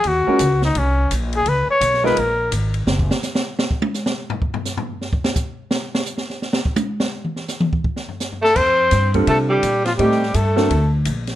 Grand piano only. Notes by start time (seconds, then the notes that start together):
0.27 G#3 C#4 F4 F#4 A#4
2.04 G#3 B3 D#4 F4 A#4
9.14 G3 C4 D4 F4 A4
9.98 A3 C4 D#4 G4 A4
10.56 A#3 C4 D4 F#4 A4